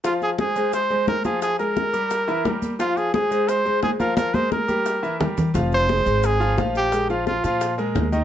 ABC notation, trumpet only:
X:1
M:4/4
L:1/8
Q:1/4=174
K:Fm
V:1 name="Trumpet"
F A A2 c2 B A | A B6 z | F A A2 c2 A B | B c B4 z2 |
z c3 A2 z G- | G F F F2 z3 |]